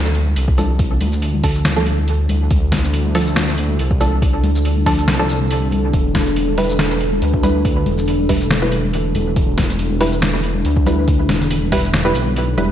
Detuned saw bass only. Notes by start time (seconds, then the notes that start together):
Already playing: D2
0.36 C2
1.01 D2
2.29 D2
2.51 D2
3.79 C2
4.43 D2
5.08 C2
5.93 E1
7.22 D2
7.86 E1
9.15 E1
9.36 E1
10.65 D2
11.29 E1
12.15 B1
12.58 E1